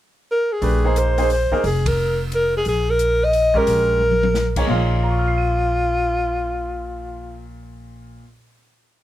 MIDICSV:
0, 0, Header, 1, 6, 480
1, 0, Start_track
1, 0, Key_signature, -5, "minor"
1, 0, Tempo, 338409
1, 874, Time_signature, 3, 2, 24, 8
1, 12814, End_track
2, 0, Start_track
2, 0, Title_t, "Alto saxophone"
2, 0, Program_c, 0, 65
2, 442, Note_on_c, 0, 70, 78
2, 743, Note_on_c, 0, 68, 85
2, 765, Note_off_c, 0, 70, 0
2, 1393, Note_on_c, 0, 72, 77
2, 1414, Note_off_c, 0, 68, 0
2, 1856, Note_off_c, 0, 72, 0
2, 1873, Note_on_c, 0, 72, 81
2, 2304, Note_off_c, 0, 72, 0
2, 2357, Note_on_c, 0, 68, 78
2, 2658, Note_on_c, 0, 70, 88
2, 2679, Note_off_c, 0, 68, 0
2, 3125, Note_off_c, 0, 70, 0
2, 3330, Note_on_c, 0, 70, 89
2, 3595, Note_off_c, 0, 70, 0
2, 3643, Note_on_c, 0, 68, 89
2, 3780, Note_off_c, 0, 68, 0
2, 3802, Note_on_c, 0, 68, 88
2, 4114, Note_on_c, 0, 70, 94
2, 4135, Note_off_c, 0, 68, 0
2, 4604, Note_on_c, 0, 75, 97
2, 4625, Note_off_c, 0, 70, 0
2, 5076, Note_on_c, 0, 70, 91
2, 5097, Note_off_c, 0, 75, 0
2, 6498, Note_off_c, 0, 70, 0
2, 6668, Note_on_c, 0, 65, 88
2, 10611, Note_off_c, 0, 65, 0
2, 12814, End_track
3, 0, Start_track
3, 0, Title_t, "Grand piano"
3, 0, Program_c, 1, 0
3, 875, Note_on_c, 1, 57, 63
3, 878, Note_on_c, 1, 62, 59
3, 890, Note_on_c, 1, 67, 56
3, 895, Note_on_c, 1, 71, 68
3, 1152, Note_off_c, 1, 57, 0
3, 1153, Note_off_c, 1, 62, 0
3, 1159, Note_off_c, 1, 67, 0
3, 1162, Note_off_c, 1, 71, 0
3, 1197, Note_on_c, 1, 58, 63
3, 1206, Note_on_c, 1, 63, 57
3, 1209, Note_on_c, 1, 68, 54
3, 1220, Note_on_c, 1, 72, 69
3, 1609, Note_off_c, 1, 58, 0
3, 1614, Note_off_c, 1, 63, 0
3, 1615, Note_off_c, 1, 68, 0
3, 1621, Note_off_c, 1, 72, 0
3, 1668, Note_on_c, 1, 58, 70
3, 1676, Note_on_c, 1, 63, 65
3, 1682, Note_on_c, 1, 68, 66
3, 1683, Note_on_c, 1, 72, 77
3, 1822, Note_off_c, 1, 58, 0
3, 1826, Note_off_c, 1, 63, 0
3, 1829, Note_off_c, 1, 68, 0
3, 1829, Note_off_c, 1, 72, 0
3, 2151, Note_on_c, 1, 58, 70
3, 2154, Note_on_c, 1, 63, 63
3, 2164, Note_on_c, 1, 68, 64
3, 2171, Note_on_c, 1, 70, 75
3, 2304, Note_off_c, 1, 58, 0
3, 2306, Note_off_c, 1, 63, 0
3, 2311, Note_off_c, 1, 68, 0
3, 2314, Note_off_c, 1, 70, 0
3, 5021, Note_on_c, 1, 56, 69
3, 5027, Note_on_c, 1, 61, 59
3, 5037, Note_on_c, 1, 67, 62
3, 5048, Note_on_c, 1, 70, 73
3, 5647, Note_off_c, 1, 56, 0
3, 5651, Note_off_c, 1, 61, 0
3, 5655, Note_off_c, 1, 67, 0
3, 5661, Note_off_c, 1, 70, 0
3, 6476, Note_on_c, 1, 58, 65
3, 6484, Note_on_c, 1, 63, 59
3, 6487, Note_on_c, 1, 68, 62
3, 6500, Note_on_c, 1, 73, 73
3, 6617, Note_off_c, 1, 58, 0
3, 6624, Note_on_c, 1, 46, 66
3, 6639, Note_on_c, 1, 58, 62
3, 6641, Note_off_c, 1, 73, 0
3, 6652, Note_on_c, 1, 65, 57
3, 6663, Note_on_c, 1, 73, 59
3, 6675, Note_on_c, 1, 77, 75
3, 7099, Note_off_c, 1, 63, 0
3, 7100, Note_off_c, 1, 68, 0
3, 7135, Note_on_c, 1, 82, 45
3, 7240, Note_on_c, 1, 85, 41
3, 7362, Note_on_c, 1, 89, 43
3, 7485, Note_on_c, 1, 96, 37
3, 7629, Note_on_c, 1, 99, 37
3, 11597, Note_off_c, 1, 82, 0
3, 11639, Note_off_c, 1, 46, 0
3, 11646, Note_off_c, 1, 58, 0
3, 11650, Note_off_c, 1, 85, 0
3, 11652, Note_off_c, 1, 65, 0
3, 11658, Note_off_c, 1, 73, 0
3, 11664, Note_off_c, 1, 77, 0
3, 11711, Note_off_c, 1, 89, 0
3, 11772, Note_off_c, 1, 96, 0
3, 11844, Note_off_c, 1, 99, 0
3, 12814, End_track
4, 0, Start_track
4, 0, Title_t, "Upright bass"
4, 0, Program_c, 2, 32
4, 874, Note_on_c, 2, 34, 80
4, 2089, Note_off_c, 2, 34, 0
4, 2322, Note_on_c, 2, 29, 78
4, 3709, Note_off_c, 2, 29, 0
4, 3770, Note_on_c, 2, 34, 80
4, 5154, Note_off_c, 2, 34, 0
4, 5202, Note_on_c, 2, 34, 79
4, 6590, Note_off_c, 2, 34, 0
4, 6640, Note_on_c, 2, 34, 85
4, 11590, Note_off_c, 2, 34, 0
4, 12814, End_track
5, 0, Start_track
5, 0, Title_t, "Muted upright bass strokes"
5, 2154, Note_on_c, 9, 29, 35
5, 2296, Note_off_c, 9, 29, 0
5, 12814, End_track
6, 0, Start_track
6, 0, Title_t, "Drums"
6, 878, Note_on_c, 9, 46, 44
6, 1020, Note_off_c, 9, 46, 0
6, 1363, Note_on_c, 9, 42, 48
6, 1505, Note_off_c, 9, 42, 0
6, 1672, Note_on_c, 9, 46, 39
6, 1814, Note_off_c, 9, 46, 0
6, 1843, Note_on_c, 9, 46, 41
6, 1985, Note_off_c, 9, 46, 0
6, 2150, Note_on_c, 9, 36, 41
6, 2292, Note_off_c, 9, 36, 0
6, 2325, Note_on_c, 9, 46, 44
6, 2467, Note_off_c, 9, 46, 0
6, 2634, Note_on_c, 9, 36, 75
6, 2638, Note_on_c, 9, 51, 72
6, 2775, Note_off_c, 9, 36, 0
6, 2780, Note_off_c, 9, 51, 0
6, 3288, Note_on_c, 9, 42, 49
6, 3430, Note_off_c, 9, 42, 0
6, 3759, Note_on_c, 9, 46, 43
6, 3901, Note_off_c, 9, 46, 0
6, 4244, Note_on_c, 9, 42, 49
6, 4386, Note_off_c, 9, 42, 0
6, 4727, Note_on_c, 9, 46, 43
6, 4869, Note_off_c, 9, 46, 0
6, 5032, Note_on_c, 9, 36, 48
6, 5174, Note_off_c, 9, 36, 0
6, 5205, Note_on_c, 9, 46, 46
6, 5347, Note_off_c, 9, 46, 0
6, 5680, Note_on_c, 9, 48, 44
6, 5821, Note_off_c, 9, 48, 0
6, 5837, Note_on_c, 9, 48, 53
6, 5979, Note_off_c, 9, 48, 0
6, 6003, Note_on_c, 9, 48, 78
6, 6145, Note_off_c, 9, 48, 0
6, 6162, Note_on_c, 9, 38, 54
6, 6304, Note_off_c, 9, 38, 0
6, 6470, Note_on_c, 9, 49, 67
6, 6472, Note_on_c, 9, 36, 73
6, 6612, Note_off_c, 9, 49, 0
6, 6613, Note_off_c, 9, 36, 0
6, 12814, End_track
0, 0, End_of_file